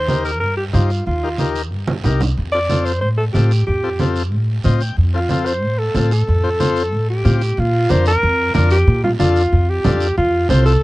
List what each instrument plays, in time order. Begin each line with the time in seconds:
Already playing: upright bass D#2, alto saxophone C5
0.08 transistor combo organ D#4 G4 A#4, high conga, short guiro
0.25 alto saxophone A#4, short guiro
0.40 upright bass G2, alto saxophone A#4, high conga, long guiro
0.57 alto saxophone G4
0.73 upright bass G2, transistor combo organ D#4 G4 C5, alto saxophone F4, high conga, short guiro
0.90 short guiro
1.06 upright bass D#2, alto saxophone F4, high conga, long guiro
1.23 transistor combo organ D#4 G4 A#4
1.38 transistor combo organ D#4 G4 A#4, high conga, short guiro
1.55 short guiro
1.71 upright bass G2, high conga, long guiro
1.87 high conga
2.04 upright bass C2, transistor combo organ D#4 G4 A#4, low conga, short guiro
2.21 low conga, short guiro
2.37 upright bass F2, high conga, long guiro
2.52 transistor combo organ C4 F4 A4, alto saxophone D5
2.69 transistor combo organ C4 F4 A4, high conga, short guiro
2.85 alto saxophone C5, short guiro
3.01 upright bass A2, alto saxophone C5, high conga, long guiro
3.17 alto saxophone A4
3.33 upright bass A2, transistor combo organ C4 F4 A4, alto saxophone G4, high conga, short guiro
3.51 short guiro
3.67 upright bass F2, alto saxophone G4, high conga, long guiro
3.83 transistor combo organ C4 F4 A4
3.99 transistor combo organ C4 F4 A4, high conga, short guiro
4.16 short guiro
4.32 upright bass A2, high conga, long guiro
4.64 upright bass A2, transistor combo organ C4 F4 C5 D#5, high conga, short guiro
4.81 transistor combo organ G5, short guiro
4.97 upright bass F2, high conga, long guiro
5.14 transistor combo organ C4 F4 A4, alto saxophone F4
5.29 transistor combo organ C4 F4 A4, high conga, short guiro
5.46 alto saxophone C5, short guiro
5.62 upright bass A2, high conga, long guiro
5.79 alto saxophone A4
5.95 upright bass A2, transistor combo organ C4 F4 A4, high conga, short guiro
6.11 alto saxophone A4, short guiro
6.27 upright bass F2, high conga, long guiro
6.43 transistor combo organ C4 F4 C5
6.60 transistor combo organ C4 F4 C5, high conga, short guiro
6.76 short guiro
6.93 upright bass A2, high conga, long guiro
7.10 alto saxophone G4
7.24 upright bass A2, transistor combo organ C4 F4 G4, high conga, short guiro
7.41 short guiro
7.57 upright bass A#2, alto saxophone F4, high conga, long guiro
7.89 upright bass F2, transistor combo organ D4 F4 A#4, alto saxophone C5, high conga, short guiro
8.06 alto saxophone A#4, short guiro
8.22 upright bass F2, high conga, long guiro
8.54 upright bass F2, transistor combo organ D4 F4 A#4, alto saxophone A#4, high conga, short guiro
8.70 alto saxophone G4, short guiro
8.87 upright bass A#2, high conga, long guiro
9.04 alto saxophone F4, low conga
9.19 upright bass F2, transistor combo organ D4 F4 A4, alto saxophone F4, high conga, short guiro
9.36 short guiro
9.52 upright bass F2, high conga, long guiro
9.69 alto saxophone G4
9.84 upright bass F2, transistor combo organ D4 F4 A4, high conga, low conga, short guiro
10.00 short guiro
10.17 upright bass F2, alto saxophone F4, high conga, long guiro
10.49 upright bass C2, transistor combo organ C4 F4 A4, alto saxophone C5, high conga, short guiro
10.66 alto saxophone A4, short guiro